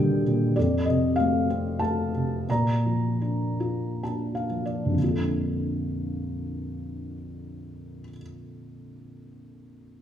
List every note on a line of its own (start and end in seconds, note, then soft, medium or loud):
0.00 0.53 D#2 soft
0.00 0.22 A#2 soft
0.00 0.58 D3 soft
0.00 0.54 G3 soft
0.00 0.58 G4 soft
0.00 0.59 D#5 medium
0.00 0.22 G5 medium
0.27 0.56 A#2 soft
0.56 2.45 F2 soft
0.56 1.45 A4 soft
0.56 0.85 D5 medium
0.85 2.10 C3 soft
0.85 1.14 D#5 medium
1.16 1.80 A3 soft
1.16 1.82 F5 medium
1.50 2.46 C4 soft
1.79 2.47 A3 soft
1.79 2.44 A5 medium
2.14 2.48 C3 soft
2.49 4.93 A#2 soft
2.49 4.01 D5 soft
2.49 4.00 A#5 medium
2.86 4.46 F3 soft
3.22 4.02 D4 soft
3.60 4.93 F4 soft
4.03 4.94 D4 soft
4.03 4.32 A5 soft
4.35 4.63 F5 soft
4.50 4.96 F3 soft
4.66 4.95 D5 soft
4.85 7.98 A#1 soft
4.90 8.03 F2 soft
4.94 8.07 D3 soft
4.99 8.12 A#3 soft
5.04 8.17 F4 soft
5.08 8.21 A4 soft